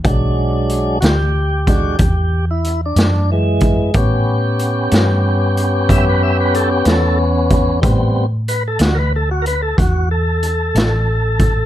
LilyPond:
<<
  \new Staff \with { instrumentName = "Tonewheel organ" } { \time 12/8 \key a \major \tempo 4. = 62 r4. <fis' g'>2~ <fis' g'>16 e'8 d'8. <e gis>4 | r2. e''16 b'16 e''16 b'16 a'16 g'16 a'8 r4 | r4 b'16 a'16 fis'16 <ais' b'>16 a'16 fis'16 <ais' b'>16 a'16 fis'8 a'2~ a'8 | }
  \new Staff \with { instrumentName = "Tonewheel organ" } { \time 12/8 \key a \major <fis gis d'>4. r4 <gis d' fis'>8 r2. | <b cis' g'>1. | <g b c'>8 r1 r4. | }
  \new Staff \with { instrumentName = "Fingered electric bass" } { \clef bass \time 12/8 \key a \major b,,4. d,4. e,4. fis,4. | a,4. g,4. fis,4. e,4. | a,4. d,4. e,4. a,,4. | }
  \new DrumStaff \with { instrumentName = "Drums" } \drummode { \time 12/8 <hh bd>4 hh8 <hh sn>4 <hh bd>8 <hh bd>4 hh8 <hh sn>4 <hh bd>8 | <hh bd>4 hh8 <hh sn>4 hh8 <hh bd>4 hh8 <hh sn>4 <hh bd>8 | <hh bd>4 hh8 <hh sn>4 hh8 <hh bd>4 hh8 <hh sn>4 <hh bd>8 | }
>>